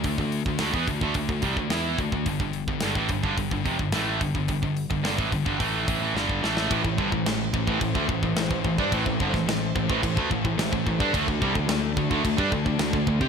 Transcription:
<<
  \new Staff \with { instrumentName = "String section" } { \time 4/4 \key a \minor \tempo 4 = 108 << { r1 | r1 | r1 | <e c' c''>1~ |
<e c' c''>1 | <d d' a''>1 | } \\ { r1 | r1 | r1 | <a a'>1~ |
<a a'>1~ | <a a'>1 | } >> }
  \new Staff \with { instrumentName = "Overdriven electric guitar" } { \clef bass \time 4/4 \key a \minor r1 | r1 | r1 | <a, e>16 <a, e>16 <g, d>16 <a, e>16 <a, e>8 <a, e>16 <a, e>16 <a, e>16 <d a>16 <a, e>16 <a, e>16 <a, e>16 <a, e>16 <a, e>16 <g d'>16 |
<a, e>16 <a, e>16 <g, d>16 <a, e>16 <a, e>8 <a, e>16 <a, e>16 <a, e>16 <d a>16 <a, e>16 <a, e>16 <a, e>16 <a, e>16 <a, e>16 <g d'>16 | <d a>16 <d a>16 <c g>16 <d a>16 <d a>8 <d a>16 <d a>16 <d a>16 <g d'>16 <d a>16 <d a>16 <d a>16 <d a>16 <d a>16 <c' g'>16 | }
  \new Staff \with { instrumentName = "Distorted electric guitar" } { \clef bass \time 4/4 \key a \minor <d a>16 <d a>8 <d a>16 <d a>16 <e b>16 <d a>16 <d a>16 <d a>16 <d a>16 <c g>16 <d a>16 <e b e'>8 <d a>16 <d a>16 | <g, d>16 <g, d>8 <g, d>16 <g, d>16 <a, e>16 <g, d>16 <g, d>16 <g, d>16 <g, d>16 <f, c>16 <g, d>16 <a, e a>8 <g, d>16 <g, d>16 | <g, d>16 <g, d>8 <g, d>16 <g, d>16 <a, e>16 <g, d>16 <g, d>16 <a, e a>8 <a, e>16 <a, e>16 <g, d g>8 <a, e a>8 | <a, e>16 <a, e>16 <g, d>16 <a, e>16 <a, e>8 <a, e>16 <a, e>16 <a, e>16 <d a>16 <a, e>16 <a, e>16 <a, e>16 <a, e>16 <a, e>16 <g d'>16 |
<a, e>16 <a, e>16 <g, d>16 <a, e>16 <a, e>8 <a, e>16 <a, e>16 <a, e>16 <d a>16 <a, e>16 <a, e>16 <a, e>16 <a, e>16 <a, e>16 <g d'>16 | <d a>16 <d a>16 <c g>16 <d a>16 <d a>8 <d a>16 <d a>16 <d a>16 <g d'>16 <d a>16 <d a>16 <d a>16 <d a>16 <d a>16 <c' g'>16 | }
  \new Staff \with { instrumentName = "Distorted electric guitar" } { \clef bass \time 4/4 \key a \minor <d a>16 <d a>8 <d a>16 <d a>16 <e b>16 <d a>16 <d a>16 <d a>16 <d a>16 <c g>16 <d a>16 <e b e'>8 <d a>16 <d a>16 | <g, d>16 <g, d>8 <g, d>16 <g, d>16 <a, e>16 <g, d>16 <g, d>16 <g, d>16 <g, d>16 <f, c>16 <g, d>16 <a, e a>8 <g, d>16 <g, d>16 | <g, d>16 <g, d>8 <g, d>16 <g, d>16 <a, e>16 <g, d>16 <g, d>16 <a, e a>8 <a, e>16 <a, e>16 <g, d g>8 <a, e a>8 | <a, e>16 <a, e>16 <g, d>16 <a, e>16 <a, e>8 <a, e>16 <a, e>16 <a, e>16 <d a>16 <a, e>16 <a, e>16 <a, e>16 <a, e>16 <a, e>16 <g d'>16 |
<a, e>16 <a, e>16 <g, d>16 <a, e>16 <a, e>8 <a, e>16 <a, e>16 <a, e>16 <d a>16 <a, e>16 <a, e>16 <a, e>16 <a, e>16 <a, e>16 <g d'>16 | <d a>16 <d a>16 <c g>16 <d a>16 <d a>8 <d a>16 <d a>16 <d a>16 <g d'>16 <d a>16 <d a>16 <d a>16 <d a>16 <d a>16 <c' g'>16 | }
  \new Staff \with { instrumentName = "Picked electric bass" } { \clef bass \time 4/4 \key a \minor d,16 d,8 d,16 d,16 e,16 d,16 d,16 d,16 d,16 c,16 d,16 e,8 d,16 d,16 | g,,16 g,,8 g,,16 g,,16 a,,16 g,,16 g,,16 g,,16 g,,16 f,,16 g,,16 a,,8 g,,16 g,,16 | g,,16 g,,8 g,,16 g,,16 a,,16 g,,16 g,,16 a,,8 a,,16 a,,16 g,,8 a,,8 | a,,16 a,,16 g,,16 a,,16 a,,8 a,,16 a,,16 a,,16 d,16 a,,16 a,,16 a,,16 a,,16 a,,16 g,16 |
a,,16 a,,16 g,,16 a,,16 a,,8 a,,16 a,,16 a,,16 d,16 a,,16 a,,16 a,,16 a,,16 a,,16 g,16 | d,16 d,16 c,16 d,16 d,8 d,16 d,16 d,16 g,16 d,16 d,16 d,16 d,16 d,16 c16 | }
  \new DrumStaff \with { instrumentName = "Drums" } \drummode { \time 4/4 <hho bd>16 bd16 hho16 bd16 <hho sn>16 bd16 <hho bd>16 bd16 <hho bd>16 bd16 <hho bd>16 bd16 <hho sn>8 <hho bd>16 bd16 | <hho bd>16 bd16 hho16 bd16 <hho sn>16 bd16 <hho bd>16 bd16 <hho bd>16 bd16 <hho bd>16 bd16 <hho sn>8 <hho bd>16 bd16 | <hho bd>16 bd16 hho16 bd16 <hho sn>16 bd16 <hho bd>16 bd16 <hho bd>8 <hho bd>8 sn16 bd16 sn16 sn16 | <cymc bd>16 bd16 bd16 bd16 <cymc sn>8 bd16 bd16 <cymc bd>16 bd16 bd16 bd16 <cymc sn>16 bd16 bd16 bd16 |
<cymc bd>16 bd16 bd16 <bd sn>16 <cymc sn>8 bd16 bd16 <cymc bd>16 bd16 bd16 bd16 <cymc sn>16 bd16 bd16 bd16 | <cymc bd>16 bd16 bd16 bd16 <cymc sn>8 bd16 bd16 <cymc bd>16 bd16 bd16 bd16 <cymc sn>16 bd16 bd16 bd16 | }
>>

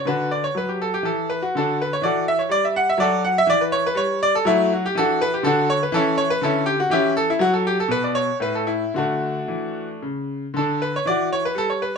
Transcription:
<<
  \new Staff \with { instrumentName = "Grand piano" } { \time 3/4 \key d \major \tempo 4 = 122 <d' fis' b'>8 d''16 cis''16 b'16 g'16 a'16 g'16 a'8 b'16 fis'16 | <d' fis' a'>8 b'16 cis''16 <fis' a' d''>8 e''16 cis''16 d''16 e''16 fis''16 e''16 | <fis' a' d''>8 fis''16 e''16 d''16 b'16 cis''16 b'16 cis''8 d''16 a'16 | <a e'>8 fis'16 g'16 <d' fis' a'>8 b'16 g'16 <d' fis' a'>8 cis''16 b'16 |
<cis' e' a'>8 cis''16 b'16 <cis' e' a'>8 g'16 fis'16 <cis' e' g'>8 a'16 e'16 | fis'16 a'16 g'16 a'16 b'16 d''16 cis''8 b'16 a'16 e'8 | <a d' fis'>2 r4 | <d' a'>8 b'16 cis''16 <fis' d''>8 cis''16 b'16 a'16 cis''16 b'16 r16 | }
  \new Staff \with { instrumentName = "Grand piano" } { \clef bass \time 3/4 \key d \major d4 fis4 e4 | d4 e4 g4 | fis4 e4 g4 | fis4 e4 d4 |
e4 d4 e4 | fis4 b,4 a,4 | d4 e4 cis4 | d4 e4 g4 | }
>>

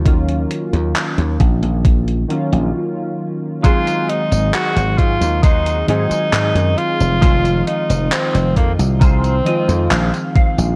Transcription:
<<
  \new Staff \with { instrumentName = "Clean electric guitar" } { \time 4/4 \key aes \mixolydian \tempo 4 = 67 r1 | <ees' ges' aes' c''>8 r4. <ees' ges' aes' c''>8 r4. | <ees' f' aes' c''>8 r4. <ees' f' aes' c''>8 ees''8 f''8 f''8 | }
  \new Staff \with { instrumentName = "Tenor saxophone" } { \time 4/4 \key aes \mixolydian r1 | f'8 ees'8 ges'8 f'8 ees'8 ees'4 f'8~ | f'8 ees'8 c'8 bes8 c'4. r8 | }
  \new Staff \with { instrumentName = "Synth keys" } { \clef bass \time 4/4 \key aes \mixolydian <ees ges bes des' f'>2~ <ees ges bes des' f'>8 <ees ges bes des' f'>8 r4 | <ees ges aes c' aes'>2~ <ees ges aes c' aes'>8 <ees ges aes c' aes'>4. | <ees f aes c' f'>2~ <ees f aes c' f'>8 <ees f aes c' f'>4. | }
  \new Staff \with { instrumentName = "Slap bass" } { \clef bass \time 4/4 \key aes \mixolydian ees,8 r16 ees,16 r16 ees,16 bes,,16 bes,,8. r16 bes,,16 r4 | r8. aes,,16 r16 aes,,16 aes,16 ees,8. aes,16 r16 aes,16 ges,16 r16 f,,16~ | f,,8 r16 f,,16 r16 f,,16 f,16 c,8. r16 f,16 bes,,16 r8 bes,,16 | }
  \new DrumStaff \with { instrumentName = "Drums" } \drummode { \time 4/4 <hh bd>16 hh16 hh16 hh16 <hc hh>16 hh16 <hh bd>16 hh16 <hh bd>16 hh16 hh16 hh16 r4 | <hh bd tamb>16 <hh tamb>16 hh16 <hh tamb>16 <hc hh tamb>16 <hh tamb>16 <hh bd>16 <hh tamb>16 <hh bd tamb>16 <hh tamb>16 hh16 <hh tamb>16 <hc hh tamb>16 <hh tamb>16 hh16 tamb16 | <hh bd tamb>16 <hh tamb>16 hh16 <hh tamb>16 <hc hh tamb>16 <hh tamb>16 <hh bd>16 <hh tamb>16 <hh bd tamb>16 <hh tamb>16 hh16 <hh tamb>16 <hc hh tamb>16 <hh tamb>16 <hh bd>16 tamb16 | }
>>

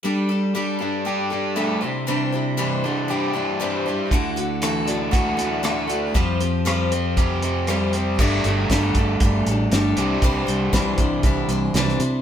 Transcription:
<<
  \new Staff \with { instrumentName = "Steel-string acoustic guitar" } { \time 4/4 \key c \lydian \tempo 4 = 118 <g d' g' a'>8 <d' g' a'>8 <g d' g' a'>8 <d' g' a'>8 <g d' g' a'>8 <d' g' a'>8 <g d' g' a'>8 <g d' e' c''>8 | <c e g d' e' c''>8 <g d' e' c''>8 <c e g d' e' c''>8 <g d' e' c''>8 <g d' e' c''>8 <g d' e' c''>8 <c e g d' e' c''>8 <g d' e' c''>8 | <d a e' fis' a'>8 <e' fis' a'>8 <d a e' fis' a'>8 <e' fis' a'>8 <a e' fis' a'>8 <e' fis' a'>8 <d a e' fis' a'>8 <e' fis' a'>8 | <f g c' g' c''>8 <c' g' c''>8 <f g c' g' c''>8 <g' c''>8 <g c' g' c''>8 <c' g' c''>8 <f g c' g' c''>8 <c' g' c''>8 |
<g d' g' a'>8 <d' g' a'>8 <g d' g' a'>8 <d' g' a'>8 <g d' g' a'>8 <d' g' a'>8 <g d' g' a'>8 <g d' e' c''>8 | <c e g d' e' c''>8 <g d' e' c''>8 <c e g d' e' c''>8 <g d' e' c''>8 <g d' e' c''>8 <g d' e' c''>8 <c e g d' e' c''>8 <g d' e' c''>8 | }
  \new Staff \with { instrumentName = "Overdriven electric guitar" } { \time 4/4 \key c \lydian g4 g8 d'8 g'8 d'8 a8 c8 | c4 e8 d'8 g'8 d'8 g8 d'8 | d4 e8 d'8 fis'8 d'8 a8 d'8 | f4 f8 c'8 g'8 c'8 g8 c'8 |
<g a d' g'>2.~ <g a d' g'>8 <c e g c' g'>8~ | <c e g c' g'>2.~ <c e g c' g'>8 r8 | }
  \new Staff \with { instrumentName = "Fingered electric bass" } { \clef bass \time 4/4 \key c \lydian r1 | r1 | d,1 | f,1 |
g,,8 g,,8 g,,8 g,,8 g,,8 a,,8 g,,8 c,8 | c,8 c,8 c,8 c,8 c,8 c,8 c,8 c8 | }
  \new DrumStaff \with { instrumentName = "Drums" } \drummode { \time 4/4 r4 r4 r4 r4 | r4 r4 r4 r4 | <hh bd>8 hh8 <hh ss>8 hh8 <hh bd>8 hh8 <hh ss>8 hh8 | <hh bd>8 hh8 <hh ss>8 hh8 <hh bd>8 hh8 <hh ss>8 hh8 |
<cymc bd>8 hh8 <hh bd sn>8 <hh bd>8 <hh bd>8 hh8 <hh sn>8 hh8 | <hh bd>8 hh8 <hh bd sn>8 <hh bd>8 <hh bd>8 hh8 <hh sn>16 sn16 hh8 | }
>>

